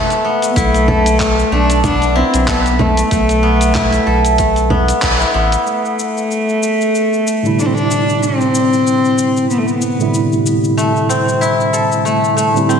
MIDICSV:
0, 0, Header, 1, 6, 480
1, 0, Start_track
1, 0, Key_signature, 0, "minor"
1, 0, Tempo, 638298
1, 423, Time_signature, 4, 2, 24, 8
1, 9624, End_track
2, 0, Start_track
2, 0, Title_t, "Cello"
2, 0, Program_c, 0, 42
2, 0, Note_on_c, 0, 59, 89
2, 153, Note_off_c, 0, 59, 0
2, 378, Note_on_c, 0, 59, 71
2, 422, Note_on_c, 0, 57, 100
2, 434, Note_off_c, 0, 59, 0
2, 1146, Note_on_c, 0, 62, 107
2, 1158, Note_off_c, 0, 57, 0
2, 1383, Note_off_c, 0, 62, 0
2, 1387, Note_on_c, 0, 62, 114
2, 1626, Note_on_c, 0, 60, 98
2, 1637, Note_off_c, 0, 62, 0
2, 1871, Note_on_c, 0, 59, 99
2, 1882, Note_off_c, 0, 60, 0
2, 2113, Note_on_c, 0, 57, 106
2, 2124, Note_off_c, 0, 59, 0
2, 3788, Note_off_c, 0, 57, 0
2, 4266, Note_on_c, 0, 57, 86
2, 5707, Note_on_c, 0, 62, 94
2, 5718, Note_off_c, 0, 57, 0
2, 5757, Note_on_c, 0, 60, 79
2, 5769, Note_off_c, 0, 62, 0
2, 5821, Note_on_c, 0, 62, 98
2, 5832, Note_off_c, 0, 60, 0
2, 6182, Note_on_c, 0, 60, 102
2, 6193, Note_off_c, 0, 62, 0
2, 7136, Note_off_c, 0, 60, 0
2, 7141, Note_on_c, 0, 59, 76
2, 7202, Note_on_c, 0, 57, 69
2, 7213, Note_off_c, 0, 59, 0
2, 7268, Note_on_c, 0, 59, 82
2, 7279, Note_off_c, 0, 57, 0
2, 7866, Note_off_c, 0, 59, 0
2, 9624, End_track
3, 0, Start_track
3, 0, Title_t, "Guzheng"
3, 0, Program_c, 1, 107
3, 0, Note_on_c, 1, 57, 79
3, 0, Note_on_c, 1, 59, 79
3, 0, Note_on_c, 1, 64, 99
3, 0, Note_on_c, 1, 69, 79
3, 181, Note_off_c, 1, 59, 0
3, 184, Note_on_c, 1, 59, 69
3, 418, Note_off_c, 1, 64, 0
3, 421, Note_on_c, 1, 64, 93
3, 660, Note_off_c, 1, 69, 0
3, 663, Note_on_c, 1, 69, 75
3, 898, Note_off_c, 1, 57, 0
3, 901, Note_on_c, 1, 57, 83
3, 1140, Note_off_c, 1, 57, 0
3, 1143, Note_on_c, 1, 57, 78
3, 1378, Note_off_c, 1, 59, 0
3, 1381, Note_on_c, 1, 59, 73
3, 1617, Note_off_c, 1, 64, 0
3, 1620, Note_on_c, 1, 64, 98
3, 1859, Note_off_c, 1, 69, 0
3, 1862, Note_on_c, 1, 69, 77
3, 2097, Note_off_c, 1, 57, 0
3, 2100, Note_on_c, 1, 57, 71
3, 2337, Note_off_c, 1, 57, 0
3, 2340, Note_on_c, 1, 57, 79
3, 2575, Note_off_c, 1, 59, 0
3, 2578, Note_on_c, 1, 59, 80
3, 2817, Note_off_c, 1, 64, 0
3, 2820, Note_on_c, 1, 64, 106
3, 3055, Note_off_c, 1, 69, 0
3, 3058, Note_on_c, 1, 69, 76
3, 3296, Note_off_c, 1, 57, 0
3, 3299, Note_on_c, 1, 57, 75
3, 3533, Note_off_c, 1, 59, 0
3, 3536, Note_on_c, 1, 59, 75
3, 3775, Note_off_c, 1, 64, 0
3, 3778, Note_on_c, 1, 64, 78
3, 3908, Note_off_c, 1, 64, 0
3, 3911, Note_on_c, 1, 64, 102
3, 4012, Note_off_c, 1, 59, 0
3, 4015, Note_on_c, 1, 59, 74
3, 4709, Note_off_c, 1, 69, 0
3, 5803, Note_off_c, 1, 57, 0
3, 5875, Note_off_c, 1, 64, 0
3, 6351, Note_off_c, 1, 59, 0
3, 8102, Note_on_c, 1, 57, 72
3, 8342, Note_on_c, 1, 60, 69
3, 8581, Note_on_c, 1, 64, 94
3, 8822, Note_on_c, 1, 69, 68
3, 9059, Note_off_c, 1, 57, 0
3, 9062, Note_on_c, 1, 57, 72
3, 9296, Note_off_c, 1, 57, 0
3, 9299, Note_on_c, 1, 57, 68
3, 9540, Note_off_c, 1, 60, 0
3, 9543, Note_on_c, 1, 60, 75
3, 9624, Note_off_c, 1, 57, 0
3, 9624, Note_off_c, 1, 60, 0
3, 9624, Note_off_c, 1, 64, 0
3, 9624, Note_off_c, 1, 69, 0
3, 9624, End_track
4, 0, Start_track
4, 0, Title_t, "Tine electric piano"
4, 0, Program_c, 2, 4
4, 5585, Note_on_c, 2, 45, 72
4, 5591, Note_on_c, 2, 50, 69
4, 5601, Note_on_c, 2, 55, 68
4, 5609, Note_on_c, 2, 48, 64
4, 5615, Note_on_c, 2, 64, 78
4, 7479, Note_off_c, 2, 45, 0
4, 7482, Note_off_c, 2, 50, 0
4, 7487, Note_off_c, 2, 55, 0
4, 7491, Note_off_c, 2, 48, 0
4, 7494, Note_off_c, 2, 64, 0
4, 7509, Note_on_c, 2, 45, 76
4, 7515, Note_on_c, 2, 50, 70
4, 7522, Note_on_c, 2, 55, 64
4, 7529, Note_on_c, 2, 48, 70
4, 7538, Note_on_c, 2, 64, 82
4, 9401, Note_off_c, 2, 45, 0
4, 9404, Note_off_c, 2, 50, 0
4, 9408, Note_off_c, 2, 55, 0
4, 9412, Note_off_c, 2, 48, 0
4, 9416, Note_off_c, 2, 64, 0
4, 9425, Note_on_c, 2, 45, 75
4, 9434, Note_on_c, 2, 50, 70
4, 9442, Note_on_c, 2, 55, 69
4, 9447, Note_on_c, 2, 60, 71
4, 9457, Note_on_c, 2, 64, 83
4, 9624, Note_off_c, 2, 45, 0
4, 9624, Note_off_c, 2, 50, 0
4, 9624, Note_off_c, 2, 55, 0
4, 9624, Note_off_c, 2, 60, 0
4, 9624, Note_off_c, 2, 64, 0
4, 9624, End_track
5, 0, Start_track
5, 0, Title_t, "Sub bass"
5, 0, Program_c, 3, 38
5, 424, Note_on_c, 3, 35, 102
5, 1082, Note_off_c, 3, 35, 0
5, 1141, Note_on_c, 3, 35, 83
5, 1677, Note_off_c, 3, 35, 0
5, 1758, Note_on_c, 3, 35, 81
5, 2281, Note_off_c, 3, 35, 0
5, 2344, Note_on_c, 3, 35, 96
5, 3002, Note_off_c, 3, 35, 0
5, 3060, Note_on_c, 3, 35, 81
5, 3535, Note_off_c, 3, 35, 0
5, 3540, Note_on_c, 3, 35, 94
5, 3704, Note_off_c, 3, 35, 0
5, 3781, Note_on_c, 3, 35, 83
5, 3945, Note_off_c, 3, 35, 0
5, 4020, Note_on_c, 3, 33, 93
5, 4185, Note_off_c, 3, 33, 0
5, 9624, End_track
6, 0, Start_track
6, 0, Title_t, "Drums"
6, 78, Note_on_c, 9, 42, 27
6, 85, Note_on_c, 9, 82, 30
6, 153, Note_off_c, 9, 42, 0
6, 160, Note_off_c, 9, 82, 0
6, 319, Note_on_c, 9, 42, 39
6, 326, Note_on_c, 9, 82, 57
6, 394, Note_off_c, 9, 42, 0
6, 401, Note_off_c, 9, 82, 0
6, 423, Note_on_c, 9, 42, 53
6, 424, Note_on_c, 9, 36, 94
6, 430, Note_on_c, 9, 82, 51
6, 498, Note_off_c, 9, 42, 0
6, 499, Note_off_c, 9, 36, 0
6, 505, Note_off_c, 9, 82, 0
6, 559, Note_on_c, 9, 42, 31
6, 566, Note_on_c, 9, 82, 30
6, 635, Note_off_c, 9, 42, 0
6, 642, Note_off_c, 9, 82, 0
6, 662, Note_on_c, 9, 64, 81
6, 737, Note_off_c, 9, 64, 0
6, 798, Note_on_c, 9, 42, 47
6, 805, Note_on_c, 9, 82, 64
6, 873, Note_off_c, 9, 42, 0
6, 880, Note_off_c, 9, 82, 0
6, 902, Note_on_c, 9, 39, 96
6, 902, Note_on_c, 9, 42, 52
6, 904, Note_on_c, 9, 36, 87
6, 909, Note_on_c, 9, 82, 49
6, 977, Note_off_c, 9, 39, 0
6, 977, Note_off_c, 9, 42, 0
6, 979, Note_off_c, 9, 36, 0
6, 984, Note_off_c, 9, 82, 0
6, 1046, Note_on_c, 9, 82, 30
6, 1121, Note_off_c, 9, 82, 0
6, 1276, Note_on_c, 9, 42, 42
6, 1283, Note_on_c, 9, 82, 57
6, 1351, Note_off_c, 9, 42, 0
6, 1358, Note_off_c, 9, 82, 0
6, 1382, Note_on_c, 9, 42, 48
6, 1382, Note_on_c, 9, 64, 74
6, 1385, Note_on_c, 9, 36, 96
6, 1389, Note_on_c, 9, 82, 49
6, 1457, Note_off_c, 9, 42, 0
6, 1457, Note_off_c, 9, 64, 0
6, 1460, Note_off_c, 9, 36, 0
6, 1464, Note_off_c, 9, 82, 0
6, 1518, Note_on_c, 9, 42, 31
6, 1525, Note_on_c, 9, 82, 31
6, 1593, Note_off_c, 9, 42, 0
6, 1600, Note_off_c, 9, 82, 0
6, 1757, Note_on_c, 9, 42, 43
6, 1764, Note_on_c, 9, 82, 56
6, 1832, Note_off_c, 9, 42, 0
6, 1839, Note_off_c, 9, 82, 0
6, 1863, Note_on_c, 9, 39, 103
6, 1863, Note_on_c, 9, 42, 57
6, 1864, Note_on_c, 9, 36, 94
6, 1870, Note_on_c, 9, 82, 52
6, 1938, Note_off_c, 9, 39, 0
6, 1938, Note_off_c, 9, 42, 0
6, 1940, Note_off_c, 9, 36, 0
6, 1945, Note_off_c, 9, 82, 0
6, 2000, Note_on_c, 9, 42, 29
6, 2007, Note_on_c, 9, 82, 30
6, 2075, Note_off_c, 9, 42, 0
6, 2082, Note_off_c, 9, 82, 0
6, 2100, Note_on_c, 9, 64, 80
6, 2176, Note_off_c, 9, 64, 0
6, 2236, Note_on_c, 9, 42, 42
6, 2243, Note_on_c, 9, 82, 57
6, 2311, Note_off_c, 9, 42, 0
6, 2318, Note_off_c, 9, 82, 0
6, 2340, Note_on_c, 9, 42, 57
6, 2343, Note_on_c, 9, 36, 100
6, 2347, Note_on_c, 9, 82, 53
6, 2415, Note_off_c, 9, 42, 0
6, 2419, Note_off_c, 9, 36, 0
6, 2422, Note_off_c, 9, 82, 0
6, 2475, Note_on_c, 9, 42, 31
6, 2482, Note_on_c, 9, 82, 33
6, 2551, Note_off_c, 9, 42, 0
6, 2558, Note_off_c, 9, 82, 0
6, 2714, Note_on_c, 9, 42, 47
6, 2721, Note_on_c, 9, 82, 64
6, 2789, Note_off_c, 9, 42, 0
6, 2796, Note_off_c, 9, 82, 0
6, 2817, Note_on_c, 9, 39, 96
6, 2817, Note_on_c, 9, 42, 55
6, 2817, Note_on_c, 9, 64, 76
6, 2823, Note_on_c, 9, 36, 93
6, 2824, Note_on_c, 9, 82, 50
6, 2893, Note_off_c, 9, 39, 0
6, 2893, Note_off_c, 9, 42, 0
6, 2893, Note_off_c, 9, 64, 0
6, 2898, Note_off_c, 9, 36, 0
6, 2900, Note_off_c, 9, 82, 0
6, 2952, Note_on_c, 9, 42, 30
6, 2959, Note_on_c, 9, 82, 31
6, 3027, Note_off_c, 9, 42, 0
6, 3034, Note_off_c, 9, 82, 0
6, 3193, Note_on_c, 9, 42, 42
6, 3200, Note_on_c, 9, 82, 62
6, 3268, Note_off_c, 9, 42, 0
6, 3275, Note_off_c, 9, 82, 0
6, 3296, Note_on_c, 9, 42, 53
6, 3302, Note_on_c, 9, 36, 91
6, 3303, Note_on_c, 9, 82, 49
6, 3371, Note_off_c, 9, 42, 0
6, 3378, Note_off_c, 9, 36, 0
6, 3378, Note_off_c, 9, 82, 0
6, 3430, Note_on_c, 9, 42, 32
6, 3437, Note_on_c, 9, 82, 31
6, 3505, Note_off_c, 9, 42, 0
6, 3512, Note_off_c, 9, 82, 0
6, 3536, Note_on_c, 9, 64, 78
6, 3611, Note_off_c, 9, 64, 0
6, 3673, Note_on_c, 9, 42, 43
6, 3680, Note_on_c, 9, 82, 64
6, 3748, Note_off_c, 9, 42, 0
6, 3755, Note_off_c, 9, 82, 0
6, 3775, Note_on_c, 9, 39, 104
6, 3775, Note_on_c, 9, 42, 59
6, 3782, Note_on_c, 9, 36, 99
6, 3782, Note_on_c, 9, 82, 56
6, 3851, Note_off_c, 9, 39, 0
6, 3851, Note_off_c, 9, 42, 0
6, 3857, Note_off_c, 9, 36, 0
6, 3858, Note_off_c, 9, 82, 0
6, 3911, Note_on_c, 9, 42, 31
6, 3918, Note_on_c, 9, 82, 29
6, 3987, Note_off_c, 9, 42, 0
6, 3994, Note_off_c, 9, 82, 0
6, 4153, Note_on_c, 9, 42, 44
6, 4160, Note_on_c, 9, 82, 58
6, 4228, Note_off_c, 9, 42, 0
6, 4235, Note_off_c, 9, 82, 0
6, 4262, Note_on_c, 9, 82, 37
6, 4337, Note_off_c, 9, 82, 0
6, 4400, Note_on_c, 9, 82, 19
6, 4475, Note_off_c, 9, 82, 0
6, 4506, Note_on_c, 9, 82, 64
6, 4581, Note_off_c, 9, 82, 0
6, 4642, Note_on_c, 9, 82, 29
6, 4717, Note_off_c, 9, 82, 0
6, 4745, Note_on_c, 9, 82, 36
6, 4820, Note_off_c, 9, 82, 0
6, 4880, Note_on_c, 9, 82, 18
6, 4955, Note_off_c, 9, 82, 0
6, 4985, Note_on_c, 9, 82, 66
6, 5060, Note_off_c, 9, 82, 0
6, 5122, Note_on_c, 9, 82, 27
6, 5197, Note_off_c, 9, 82, 0
6, 5226, Note_on_c, 9, 82, 36
6, 5301, Note_off_c, 9, 82, 0
6, 5363, Note_on_c, 9, 82, 20
6, 5438, Note_off_c, 9, 82, 0
6, 5468, Note_on_c, 9, 82, 62
6, 5543, Note_off_c, 9, 82, 0
6, 5604, Note_on_c, 9, 82, 26
6, 5680, Note_off_c, 9, 82, 0
6, 5709, Note_on_c, 9, 82, 41
6, 5784, Note_off_c, 9, 82, 0
6, 5844, Note_on_c, 9, 82, 19
6, 5920, Note_off_c, 9, 82, 0
6, 5948, Note_on_c, 9, 82, 68
6, 6023, Note_off_c, 9, 82, 0
6, 6083, Note_on_c, 9, 82, 27
6, 6158, Note_off_c, 9, 82, 0
6, 6187, Note_on_c, 9, 82, 41
6, 6263, Note_off_c, 9, 82, 0
6, 6323, Note_on_c, 9, 82, 19
6, 6398, Note_off_c, 9, 82, 0
6, 6428, Note_on_c, 9, 82, 73
6, 6503, Note_off_c, 9, 82, 0
6, 6565, Note_on_c, 9, 82, 31
6, 6640, Note_off_c, 9, 82, 0
6, 6670, Note_on_c, 9, 82, 40
6, 6745, Note_off_c, 9, 82, 0
6, 6804, Note_on_c, 9, 82, 21
6, 6879, Note_off_c, 9, 82, 0
6, 6906, Note_on_c, 9, 82, 74
6, 6981, Note_off_c, 9, 82, 0
6, 7043, Note_on_c, 9, 82, 31
6, 7119, Note_off_c, 9, 82, 0
6, 7147, Note_on_c, 9, 82, 37
6, 7222, Note_off_c, 9, 82, 0
6, 7279, Note_on_c, 9, 82, 20
6, 7354, Note_off_c, 9, 82, 0
6, 7381, Note_on_c, 9, 82, 64
6, 7456, Note_off_c, 9, 82, 0
6, 7521, Note_on_c, 9, 82, 29
6, 7597, Note_off_c, 9, 82, 0
6, 7626, Note_on_c, 9, 82, 43
6, 7701, Note_off_c, 9, 82, 0
6, 7763, Note_on_c, 9, 82, 19
6, 7838, Note_off_c, 9, 82, 0
6, 7867, Note_on_c, 9, 82, 67
6, 7943, Note_off_c, 9, 82, 0
6, 8002, Note_on_c, 9, 82, 28
6, 8078, Note_off_c, 9, 82, 0
6, 8110, Note_on_c, 9, 82, 41
6, 8185, Note_off_c, 9, 82, 0
6, 8244, Note_on_c, 9, 82, 19
6, 8320, Note_off_c, 9, 82, 0
6, 8349, Note_on_c, 9, 82, 68
6, 8425, Note_off_c, 9, 82, 0
6, 8485, Note_on_c, 9, 82, 31
6, 8561, Note_off_c, 9, 82, 0
6, 8589, Note_on_c, 9, 82, 41
6, 8664, Note_off_c, 9, 82, 0
6, 8725, Note_on_c, 9, 82, 19
6, 8801, Note_off_c, 9, 82, 0
6, 8826, Note_on_c, 9, 82, 68
6, 8901, Note_off_c, 9, 82, 0
6, 8963, Note_on_c, 9, 82, 31
6, 9038, Note_off_c, 9, 82, 0
6, 9070, Note_on_c, 9, 82, 40
6, 9145, Note_off_c, 9, 82, 0
6, 9206, Note_on_c, 9, 82, 21
6, 9281, Note_off_c, 9, 82, 0
6, 9310, Note_on_c, 9, 82, 70
6, 9385, Note_off_c, 9, 82, 0
6, 9447, Note_on_c, 9, 82, 29
6, 9522, Note_off_c, 9, 82, 0
6, 9551, Note_on_c, 9, 82, 47
6, 9624, Note_off_c, 9, 82, 0
6, 9624, End_track
0, 0, End_of_file